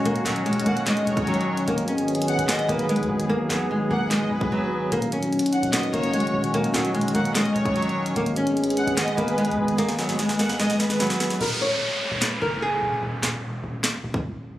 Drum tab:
CC |------------------------------------------------|------------------------------------------------|------------------------------------------------|------------------------------------------------|
HH |x--x--x--x--x-x-x-x--x--x--x--x--x--x-x-x----x--|x--x--x--x--x-x-x-x--x--x--x--x--x--x-x-x----x--|------------------------------------------------|x--x--x--x--x-x-x-x--x--x--x--x--x--x-x-x----x--|
CP |------x-----------------x-----------------------|------------------------x-----------------------|------x-----------------x-----------------------|------------------------x-----------------------|
SD |------o-----------------o-----------------------|------------------------o-----------------------|------o-----------------o-----------------------|------------------------o-----------------------|
BD |---------------------------------o--------------|------------------------------------------------|---------------------------------o--------------|------------------------------------------------|

CC |------------------------------------------------|------------------------------------------------|------------------------------------------------|x-----------------------------------------------|
HH |x--x--x--x--x-x-x-x--x--x--x--x--x--x-x-x----x--|x--x--x--x--x-x-x-x--x--x--x--x--x--x-x-x----x--|x--x--x--x--x-----o--x--x--x--x--x--x-x-x----x--|------------------------------------------------|
CP |------x-----------------x-----------------------|------------------------x-----------------------|------------------------------------------------|------------------------x-----------------------|
SD |------o-----------------o-----------------------|------------------------o-----------------------|o--o--o--o--o--o--o--o--o--o--o--o--o--o--o--o--|------------------------o-----------------------|
BD |---------------------------------o--------------|------------------------------------------------|------------------------------------------------|------------------------------------------------|

CC |------------------------------------------------|
HH |------------------------------------------------|
CP |------x-----------------x-----------------------|
SD |------o-----------------o-----------------------|
BD |---------------------------------o--------------|